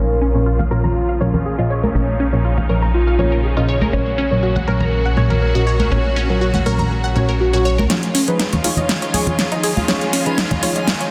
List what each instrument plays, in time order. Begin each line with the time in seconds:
Already playing: analog synth bass A#1, synth stab A#2 F3 C#4 A#4 C#5, string section A#2 C#3 F3 C#4 F4, synth bell A#4, soft synth lead A#4
0.21 synth pluck C#4
0.34 synth stab A#2 F3 C#4 A#4 C#5
0.46 synth pluck F4
0.59 synth pluck F5, high conga, low conga
0.71 synth stab A#2 F3 C#4 A#4 C#5, synth bell F4, soft synth lead F4, synth pluck A#4
0.84 synth pluck A#5, low conga
1.09 synth pluck F5
1.21 synth stab A#2 F3 C#4 A#4 C#5, synth pluck C#5, high conga
1.34 synth pluck A#4, low conga
1.45 soft synth lead G#4, synth bell G#4
1.58 synth stab A#2 F3 C#4 A#4 D#5, synth pluck F4
1.70 synth pluck C#5
1.83 synth pluck A#4, high conga
1.95 analog synth bass A#1, synth stab A#2 F3 C#4 A#4 C#5, synth pluck C#4, string section D#4
2.20 synth pluck C#4
2.33 synth stab A#2 F3 C#4 A#4 C#5
2.45 synth pluck F4
2.58 synth pluck F5, high conga, low conga
2.69 synth stab A#2 F3 C#4 A#4 C#5, synth pluck A#4
2.82 synth pluck A#5
2.94 soft synth lead F4, synth bell F4
3.07 synth pluck F5
3.19 synth stab A#2 F3 C#4 A#4 C#5, synth pluck C#5, high conga
3.32 synth pluck A#4
3.44 soft synth lead G#4, synth bell G#4
3.57 synth stab A#2 F3 C#4 A#4 D#5, synth pluck F4
3.68 synth pluck C#5
3.81 synth pluck A#4, high conga
3.93 analog synth bass A#1, synth stab A#2 F#3 C#4 A#4 C#5, string section A#2 F#3 F#4, synth pluck C#4, synth bell C#5, soft synth lead C#5
4.18 synth pluck C#4
4.31 synth stab A#2 F#3 C#4 A#4 C#5
4.43 synth pluck F#4
4.56 synth pluck F#5, high conga, low conga
4.67 synth stab A#2 F#3 C#4 A#4 C#5, synth pluck A#4, soft synth lead A#4, synth bell A#4
4.80 synth pluck A#5, low conga
5.05 synth pluck F#5
5.17 synth stab A#2 F#3 C#4 A#4 C#5, synth pluck C#5, high conga
5.30 synth pluck A#4, low conga
5.42 synth bell A#4, soft synth lead A#4
5.55 synth stab A#2 F#3 C#4 A#4 D#5, synth pluck F#4
5.67 synth pluck C#5
5.80 synth pluck A#4, high conga
5.92 analog synth bass A#1, synth stab A#2 F#3 C#4 A#4 C#5, synth pluck C#4
6.16 synth pluck C#4
6.29 synth stab A#2 F#3 C#4 A#4 C#5
6.41 synth pluck F#4
6.54 synth pluck F#5, high conga, low conga
6.66 synth stab A#2 F#3 C#4 A#4 C#5, synth pluck A#4
6.78 synth pluck A#5, low conga
6.91 soft synth lead F#4, synth bell F#4
7.04 synth pluck F#5
7.16 synth stab A#2 F#3 C#4 A#4 C#5, synth pluck C#5, high conga
7.29 synth pluck A#4
7.40 synth bell F#4, soft synth lead F#4
7.53 synth stab A#2 F#3 C#4 A#4 C#5, synth pluck F#4
7.65 synth pluck C#5
7.78 synth pluck A#4, high conga
7.90 string section D#3 F3 G#3 C#4 F4, synth stab F3 D#4 G#4 C#5, synth pluck C#4, synth texture G#5, snare, closed hi-hat
8.03 closed hi-hat
8.15 synth pluck C#4, open hi-hat
8.28 synth stab F3 D#4 G#4 B4, closed hi-hat
8.40 synth pluck D#4, snare, closed hi-hat
8.53 synth pluck C#5, closed hi-hat, high conga, low conga
8.64 synth stab F3 D#4 G#4 C#5, synth pluck F4, open hi-hat
8.77 synth pluck D#5, closed hi-hat, low conga
8.89 snare, closed hi-hat
9.02 synth pluck C#5, closed hi-hat
9.14 synth stab F3 D#4 G#4 C#5, synth pluck G#4, open hi-hat, high conga
9.27 synth pluck F4, closed hi-hat, low conga
9.39 snare, closed hi-hat
9.52 synth stab F3 D#4 G#4 D#5, synth pluck D#4, closed hi-hat
9.63 synth pluck G#4, open hi-hat
9.77 synth pluck F4, high conga
9.88 synth stab F3 D#4 G#4 C#5, synth pluck C#4, snare, closed hi-hat
10.01 closed hi-hat
10.13 synth pluck C#4, open hi-hat
10.26 synth stab F3 D#4 G#4 B4, closed hi-hat
10.38 synth pluck D#4, snare, closed hi-hat
10.51 synth pluck C#5, closed hi-hat, high conga, low conga
10.63 synth stab F3 D#4 G#4 C#5, synth pluck F4, open hi-hat
10.76 synth pluck D#5, closed hi-hat
10.88 snare, closed hi-hat
11.01 synth pluck C#5, closed hi-hat